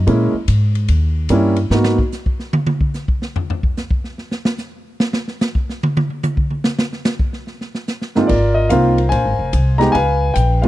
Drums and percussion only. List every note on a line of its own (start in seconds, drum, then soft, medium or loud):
0.07 kick soft
0.07 ride medium
0.48 kick soft
0.48 hi-hat pedal medium
0.48 ride medium
0.75 ride soft
0.88 kick soft
0.88 ride medium
1.29 kick soft
1.29 hi-hat pedal medium
1.29 ride medium
1.56 ride soft
1.71 snare medium
1.84 snare medium
1.98 kick medium
2.12 snare soft
2.12 hi-hat pedal medium
2.26 kick medium
2.39 snare soft
2.53 high tom loud
2.66 high tom loud
2.81 kick medium
2.94 snare soft
2.94 hi-hat pedal medium
3.08 kick medium
3.22 snare medium
3.36 floor tom loud
3.50 floor tom medium
3.63 kick medium
3.77 snare medium
3.77 hi-hat pedal medium
3.90 kick medium
4.04 snare soft
4.18 snare soft
4.31 snare medium
4.45 snare loud
4.58 snare soft
4.58 hi-hat pedal medium
5.00 snare loud
5.13 snare medium
5.28 snare soft
5.41 snare loud
5.41 hi-hat pedal medium
5.55 kick medium
5.69 snare soft
5.83 high tom loud
5.97 high tom loud
6.10 high tom soft
6.23 hi-hat pedal medium
6.23 high tom loud
6.37 kick medium
6.50 high tom soft
6.64 snare medium
6.79 snare loud
6.93 snare soft
7.05 snare loud
7.05 hi-hat pedal medium
7.19 kick medium
7.33 snare soft
7.47 snare soft
7.61 snare soft
7.75 snare soft
7.87 snare medium
7.87 hi-hat pedal medium
8.01 snare soft
8.15 snare soft
8.29 kick medium
8.29 crash medium
8.70 kick soft
8.70 hi-hat pedal medium
8.70 ride medium
8.98 ride soft
9.12 kick soft
9.12 ride medium
9.53 kick soft
9.53 hi-hat pedal soft
9.53 ride medium
9.81 snare soft
9.81 ride soft
9.95 kick soft
9.95 ride medium
10.35 kick soft
10.35 hi-hat pedal medium
10.35 ride medium
10.63 ride soft